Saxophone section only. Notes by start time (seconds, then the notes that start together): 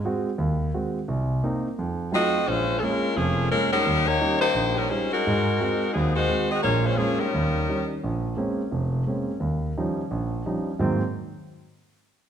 2.14 C4 F#4 A4 D#5
2.48 G#3 C#4 F4 C5
2.79 G#3 C#4 A4 A#4
2.83 F4
3.16 F3 A#3 C#4 G#4
3.51 G#3 C#4 F4 A#4
3.72 G3 C#4 D#4 A#4
4.07 A#3 D#4 G4 C#5
4.41 A#3 D#4 G4 C5
4.76 G3 C#4 D#4 A#4
4.89 G#3 C#4 F4 C5
5.12 G#3 D#4 F#4 A#4
5.93 F#3 C4 D#4 G#4
6.15 G#3 D#4 F#4 C5
6.51 C4 F#4 G#4 D#5
6.63 A#3 F4 G#4 C#5
6.86 G#3 C#4 F4 C5
6.97 F3 A#3 C#4 G#4
7.20 G3 C#4 D#4 A#4